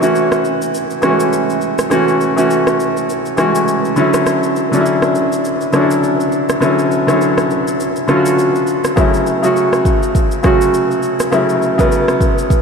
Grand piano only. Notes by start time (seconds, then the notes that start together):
Already playing: A3 C#4 F#4
0.00 E3 A3 C#4 F#4
1.02 E3 G#3 C#4 F#4
1.09 A3
1.90 E3 A3 C#4 F#4
2.36 E3 A3 C#4 F#4
3.37 E3 G#3 C#4 F#4
3.44 A3
3.96 D3 F#3 C#4 E4
4.72 D3 F#3 C#4 D4
4.81 E4
5.72 D3 F#3 C#4 D4
5.81 E4
6.60 D3 F#3 C#4 E4
7.07 D3 F#3 C#4 E4
8.08 D3 F#3 C#4 F4
8.17 F#4
8.96 C#3 F#3 A3 E4
9.42 C#3 F#3 A3 F#4
10.43 C#3 F#3 A3 F#4
11.31 C#3 F#3 A3 E4
11.78 C#3 F#3 A3 B3